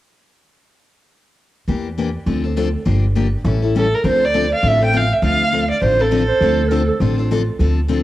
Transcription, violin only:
3.78 A4
3.95 A#4
4.07 C5
4.25 D5
4.55 F5
4.68 E5
4.85 G5
4.96 F5
5.13 E5
5.25 F5
5.71 D5
5.83 C5
6.01 A4

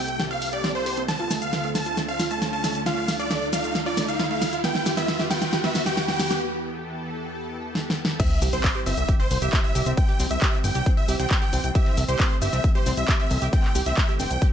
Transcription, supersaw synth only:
Already playing: G5
0.31 F5
0.53 D5
0.75 C5
1.08 A5
1.42 F5
1.75 A5
2.08 F5
2.31 A5
2.53 A5
2.86 F5
3.20 D5
3.53 F5
3.86 D5
4.08 F5
4.31 F5
4.64 G5
4.97 E5
5.31 G5
5.64 E5
5.86 G5
6.08 G5
8.20 E5
8.53 C5
8.86 E5
9.20 C5
9.42 E5
9.64 E5
9.97 G5
10.31 E5
10.64 G5
10.97 E5
11.19 G5
11.42 G5
11.75 E5
12.08 C5
12.42 E5
12.75 C5
12.97 E5
13.20 E5
13.53 G5
13.86 E5
14.20 G5

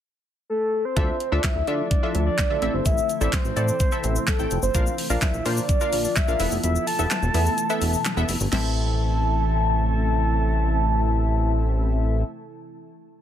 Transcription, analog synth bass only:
0.97 D2
1.32 D2
1.56 D2
1.68 D3
2.15 D2
2.50 D2
2.62 A1
2.74 G1
2.86 A1
3.21 A1
3.45 A1
3.57 A2
4.04 A1
4.39 A1
4.51 F1
4.63 G1
4.75 A#1
5.10 A#1
5.34 A#1
5.46 A#2
5.93 A#1
6.28 A#1
6.40 E1
6.52 F1
6.64 E1
6.99 E1
7.23 E1
7.34 E2
7.81 E1
8.17 E1
8.29 F1
8.41 G1
8.53 A1

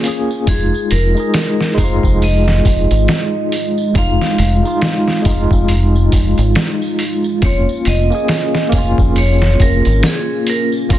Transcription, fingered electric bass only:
0.48 F1
0.92 F1
1.78 F1
2.03 F1
2.65 F1
2.91 G#1
3.95 F1
4.39 F1
5.26 F1
5.51 F1
6.38 G#1
7.43 F1
7.87 F1
8.73 F1
8.98 F1
9.60 F1
9.86 G#1
10.90 F1

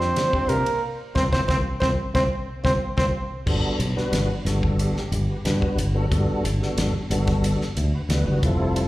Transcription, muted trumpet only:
Already playing: C5
0.49 A#4
1.15 C5
1.32 C5
1.48 C5
1.80 C5
2.15 C5
2.65 C5
2.98 C5

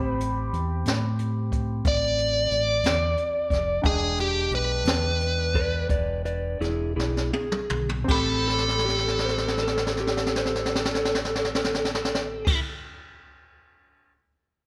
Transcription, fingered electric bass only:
Already playing: A1
0.53 E2
0.85 A2
1.85 A1
2.51 A1
2.83 E2
3.50 F1
3.84 E1
4.51 B1
4.85 E2
5.89 E1
6.60 E1
6.97 B1
7.71 B1
8.08 A1

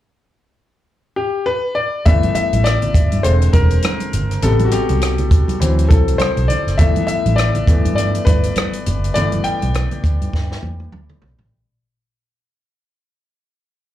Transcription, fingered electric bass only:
2.06 G1
2.53 A1
2.94 G1
3.13 G2
3.24 E1
3.53 E1
4.14 G1
4.43 A1
4.90 C2
5.61 D2
5.91 C2
6.20 muted fingered electric bass stroke
6.37 B1
6.67 F#1
6.79 G1
7.26 A1
7.67 G1
7.85 G2
8.27 G1
8.87 F#1
9.16 G1
9.63 B1
10.04 D2
10.22 G2
10.34 G2
10.63 E2
10.92 D2
11.22 B1
11.38 A1

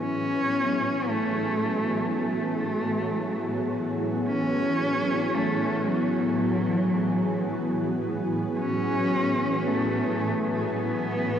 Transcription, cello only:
0.00 C#4
1.09 A3
2.16 A3
4.28 C#4
5.36 A3
5.87 F#3
8.58 C#4
9.68 A3
10.75 B3

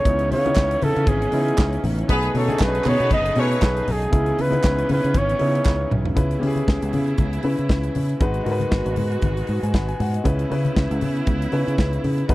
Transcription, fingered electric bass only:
0.05 C#2
0.31 C#3
0.57 C#2
0.82 C#3
0.97 C#3
1.07 G#1
1.33 C#3
1.58 C#2
1.84 A1
2.10 B1
2.34 B2
2.61 B1
2.86 B2
3.00 B2
3.11 F#1
3.36 B2
3.62 B1
3.88 B1
4.13 C#2
4.38 C#3
4.64 C#2
4.90 C#3
5.04 C#3
5.15 G#1
5.41 C#3
5.66 C#2
5.92 B1
6.17 C#2
6.43 C#3
6.68 C#2
6.83 C#2
6.94 C#3
7.18 C#2
7.44 C#3
7.59 C#3
7.70 C#2
7.95 C#3
8.21 G#1
8.46 G#2
8.72 G#1
8.86 G#1
8.97 G#2
9.23 G#1
9.49 G#2
9.63 G#2
9.74 G#1
10.00 G#2
10.26 C#2
10.51 C#3
10.77 C#2
10.91 C#2
11.02 C#3
11.28 C#2
11.53 C#3
11.68 C#3
11.79 C#2
12.04 C#3
12.29 G#1

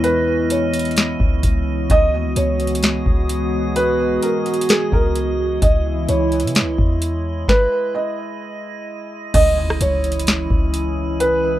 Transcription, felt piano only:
0.04 B4
0.51 C#5
1.91 D#5
2.37 C#5
3.76 B4
4.23 A#4
4.70 G#4
4.93 A#4
5.62 D#5
6.09 C#5
7.49 B4
7.95 D#5
9.34 D#5
9.81 C#5
11.20 B4

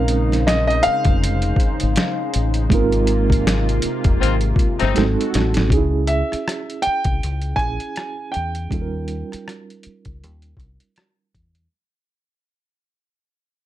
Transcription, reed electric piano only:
Already playing: G#3 C4 C#4 D#4 A#4
2.69 G#3 A#3 D#4
2.74 C4 F4 A#4
4.94 G#3 A3 D#4 F#4 A4
5.01 C4
5.69 C#4 D#4
5.73 E4 G#4
7.58 C#4 E4 G#4
8.70 G3 C#4 D#4 F4
8.74 A4
8.81 A#4

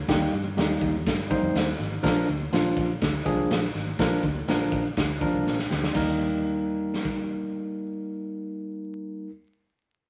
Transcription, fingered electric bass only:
0.09 D#2
0.32 G2
0.57 D#2
0.81 D#2
1.06 G2
1.42 F2
1.54 D#2
1.79 G#1
2.04 A#1
2.28 D2
2.53 A#1
2.77 A#1
3.02 D2
3.26 C2
3.50 A#1
3.75 G#1
3.99 A#1
4.23 D2
4.48 A#1
4.72 A#1
4.97 D2
5.34 C2
5.46 A#1
5.70 D2
5.95 D#2

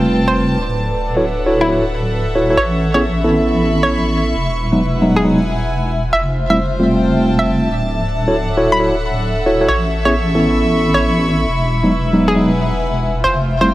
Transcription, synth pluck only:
0.28 C5
1.61 E4
2.57 C#5
2.94 C#5
3.83 C#5
5.16 G#4
6.13 E5
6.50 E5
7.39 E5
8.72 B5
9.68 C#5
10.05 C#5
10.94 C#5
12.28 G#4
13.24 C5
13.61 C5

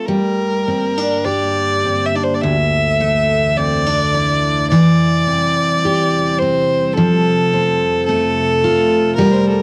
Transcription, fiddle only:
0.05 A#4
1.24 D5
2.06 E5
2.15 D5
2.24 C5
2.34 D5
2.41 E5
3.58 D5
4.69 D5
6.39 C5
6.94 A4
8.05 A4
9.15 A#4
9.31 A#4 C5
9.47 A4 A#4

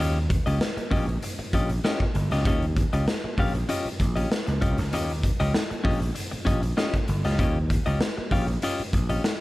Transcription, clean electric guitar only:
0.00 C#4 F4 G4 D#5
0.30 muted clean electric guitar stroke
0.46 C#4 F4 G4 D#5
0.60 muted clean electric guitar stroke
0.77 muted clean electric guitar stroke
0.91 C#4 F4 G4 D#5
1.07 muted clean electric guitar stroke
1.23 muted clean electric guitar stroke
1.39 muted clean electric guitar stroke
1.54 C#4 F4 G4 D#5
1.71 muted clean electric guitar stroke
1.84 C#4 F4 G4 D#5
2.15 muted clean electric guitar stroke
2.32 C#4 F4 G4 D#5
2.46 C#4 F4 G4 D#5
2.77 muted clean electric guitar stroke
2.93 C#4 F4 G4 D#5
3.24 muted clean electric guitar stroke
3.39 C#4 F4 G4 F5
3.54 muted clean electric guitar stroke
3.69 C#4 F4 G4 D#5
4.00 muted clean electric guitar stroke
4.16 C#4 F4 G4 D#5
4.31 muted clean electric guitar stroke
4.46 muted clean electric guitar stroke
4.61 C#4 F4 G4 D#5
4.78 muted clean electric guitar stroke
4.93 C#4 F4 G4 D#5
5.24 muted clean electric guitar stroke
5.40 C#4 F4 G4 D#5
5.55 muted clean electric guitar stroke
5.70 muted clean electric guitar stroke
5.84 C#4 F4 G4 D#5
6.01 muted clean electric guitar stroke
6.14 muted clean electric guitar stroke
6.31 muted clean electric guitar stroke
6.45 C#4 F4 G4 D#5
6.62 muted clean electric guitar stroke
6.77 C#4 F4 G4 D#5
7.09 muted clean electric guitar stroke
7.25 C#4 F4 G4 D#5
7.38 C#4 F4 G4 D#5
7.70 muted clean electric guitar stroke
7.86 C#4 F4 G4 D#5
8.00 muted clean electric guitar stroke
8.17 muted clean electric guitar stroke
8.32 C#4 F4 G4 F5
8.48 muted clean electric guitar stroke
8.63 C#4 F4 G4 D#5
8.93 muted clean electric guitar stroke
9.09 C#4 F4 G4 D#5
9.24 muted clean electric guitar stroke

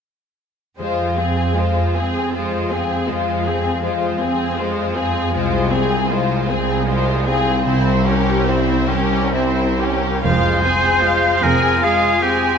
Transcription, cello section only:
0.78 F2
1.97 F2
3.09 F2
4.22 F2
5.35 C2
6.49 C2
7.65 C2
8.90 C2
10.25 F2
11.41 F2

